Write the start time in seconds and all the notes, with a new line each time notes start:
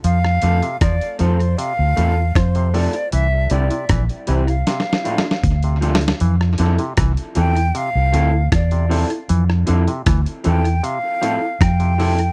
0.04 F2 F3 F5, closed hi-hat
0.25 cross-stick
0.42 F2 D3 A3 C4 F4 A4, closed hi-hat
0.62 C3, closed hi-hat
0.81 E2 F3 D5, kick, cross-stick, closed hi-hat
1.01 closed hi-hat
1.19 F2 F3 A3 C4 F4 A4 C5, closed hi-hat
1.40 closed hi-hat
1.58 C3 F5, closed hi-hat
1.79 D2
1.96 E2 A2 A3 C4 F4 A4, closed hi-hat
2.35 F2 C5, kick, cross-stick, closed hi-hat
2.55 C3, closed hi-hat
2.74 C3 A3 C4 F4 A4 D5, open hi-hat
2.93 muted clean electric guitar stroke, closed hi-hat
3.12 C2 E3 E5, closed hi-hat
3.50 C2 D3 G3 C4 E4 G4 D5, closed hi-hat
3.70 C3, closed hi-hat
3.89 A#1 E3, kick, cross-stick, closed hi-hat
4.09 closed hi-hat
4.27 C2 E3 G3 C4 E4 G4 C5, closed hi-hat
4.48 F5, closed hi-hat
4.67 C3, snare, closed hi-hat
4.80 snare
4.93 snare
5.04 A2 F3 A3 D4 F4, closed hi-hat
5.18 snare
5.31 snare
5.44 D2, kick, closed hi-hat
5.63 C3, closed hi-hat
5.81 C3 F3 A3 D4 F4, closed hi-hat
5.95 snare
6.01 muted clean electric guitar stroke, closed hi-hat
6.08 snare
6.20 F2 E3, closed hi-hat
6.41 cross-stick
6.58 F2 D3 F3 C4 E4 A4, closed hi-hat
6.79 C3, closed hi-hat
6.97 C2 E3, kick, cross-stick, closed hi-hat
7.17 closed hi-hat
7.35 E2 E3 F3 C4 E4 A4 G5, closed hi-hat
7.57 closed hi-hat
7.75 C3 F5, closed hi-hat
7.95 C2
8.13 D2 A2 F3 C4 E4 A4, closed hi-hat
8.52 E2 D5, kick, cross-stick, closed hi-hat
8.71 C3, closed hi-hat
8.89 C3 F3 C4 E4 A4, open hi-hat
9.10 closed hi-hat
9.29 F2 E3, closed hi-hat
9.50 cross-stick
9.67 F2 D3 F3 C4 E4 A4, closed hi-hat
9.88 C3, closed hi-hat
10.06 D2 E3, kick, cross-stick, closed hi-hat
10.26 closed hi-hat
10.44 E2 E3 F3 C4 E4 A4 G5, closed hi-hat
10.65 closed hi-hat
10.83 C3 F5, closed hi-hat
11.21 A2 F3 C4 E4 A4, closed hi-hat
11.61 F2 G5, kick, cross-stick, closed hi-hat
11.80 C3, closed hi-hat
11.98 C3 F3 C4 E4 A4, open hi-hat
12.19 closed hi-hat